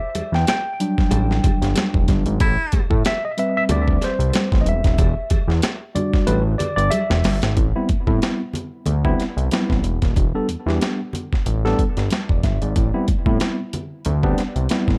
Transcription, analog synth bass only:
0.15 0.22 E2 medium
0.32 0.45 E2 medium
1.11 1.40 A1 loud
1.62 1.74 G1 medium
1.94 2.07 E1 medium
2.08 2.25 G1 medium
2.26 2.39 G#1 medium
2.40 2.57 A1 loud
2.73 2.80 A2 medium
2.90 3.03 A2 loud
3.69 3.98 D2 loud
4.19 4.32 C2 loud
4.52 4.65 A1 medium
4.66 4.82 E1 medium
4.85 4.97 D#1 medium
4.98 5.15 E1 loud
5.31 5.38 E2 soft
5.48 5.61 E2 loud
6.27 6.56 A1 loud
6.77 6.90 G1 loud
7.10 7.23 E1 medium
7.25 7.41 G1 medium
7.43 7.56 G#1 medium
7.56 7.73 A1 loud
7.89 7.97 A2 soft
8.07 8.20 A2 medium
8.86 9.15 D2 medium
9.37 9.50 C2 medium
9.70 9.82 A1 medium
9.83 10.00 E1 medium
10.02 10.15 D#1 medium
10.17 10.33 E1 loud
10.49 10.56 E2 soft
10.66 10.79 E2 loud
11.46 11.75 A1 loud
11.97 12.10 G1 medium
12.30 12.42 E1 medium
12.43 12.59 G1 medium
12.62 12.74 G#1 medium
12.76 12.92 A1 loud
13.08 13.15 A2 soft
13.26 13.39 A2 medium
14.06 14.34 D2 loud
14.56 14.68 C2 medium
14.87 14.98 A1 medium

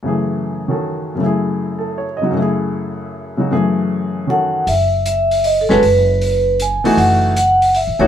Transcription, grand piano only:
0.03 1.14 F#2 soft
0.03 1.16 C#3 soft
0.03 1.21 E3 soft
0.03 1.19 A3 soft
0.08 1.22 G#4 soft
0.68 1.20 D#3 soft
0.68 1.21 C#4 soft
0.68 1.21 F#4 soft
0.68 1.22 A4 soft
1.15 2.29 F#2 soft
1.15 2.20 C#3 soft
1.21 2.35 A3 soft
1.21 2.38 E4 soft
1.26 2.39 G#4 soft
1.78 2.05 A4 soft
1.98 2.28 C#5 soft
2.17 2.44 D#5 soft
2.22 2.32 C#3 soft
2.22 2.36 F#3 soft
2.22 2.36 D#4 soft
2.22 2.37 F#4 soft
2.31 3.49 F#2 soft
2.31 3.36 C#3 soft
2.37 3.50 A3 soft
2.37 3.53 E4 soft
2.42 3.51 G#4 soft
3.37 3.50 C#3 soft
3.37 3.51 F#3 soft
3.37 3.52 D#4 soft
3.37 3.52 F#4 soft
3.51 4.67 F#2 soft
3.51 4.67 C#3 soft
3.51 4.67 E3 soft
3.51 4.67 A3 soft
3.51 4.68 G#4 medium
4.27 4.66 D#3 soft
4.27 4.67 C#4 soft
4.27 4.68 F#4 soft
4.27 4.68 A4 soft
5.69 5.81 G#3 medium
5.69 5.81 C#4 medium
5.69 5.82 F#4 medium
5.69 5.82 A4 medium
6.84 7.33 E3 medium
6.84 7.34 A3 medium
6.84 7.34 D#4 medium
6.84 7.34 F#4 medium
7.99 8.07 E3 medium
7.99 8.07 A3 medium
7.99 8.07 D#4 medium
7.99 8.07 F#4 medium

